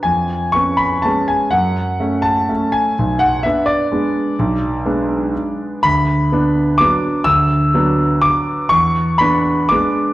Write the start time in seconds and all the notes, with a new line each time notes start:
0.03 F2 G#5
0.52 B3 C#4 C#6
0.77 B5
1.02 G#3 B3 C#4 A5
1.28 G#5
1.51 F#2 F#5
2.00 A3 C#4
2.22 A5
2.49 A3 C#4
2.72 G#5
2.99 B1
3.19 F#5
3.43 B3 D4 E5
3.66 D5
3.92 G#3 B3 D4
4.39 B1
4.85 G#3 B3 D4
5.83 D2 B5
6.32 B3 D4
6.78 F#3 B3 D4 D6
7.24 D2 E6
7.74 F#3 B3 D4
8.21 D6
8.69 E2 C#6
9.18 B3 D4 B5
9.69 G#3 B3 D4 D6